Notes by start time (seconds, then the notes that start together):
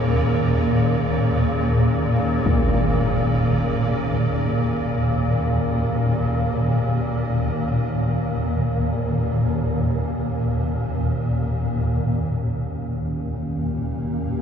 Already playing: D#2 A#2 D#3 C#4 G#4 A#4
2.46 impact
11.84 D#2 A#2
13.37 F#4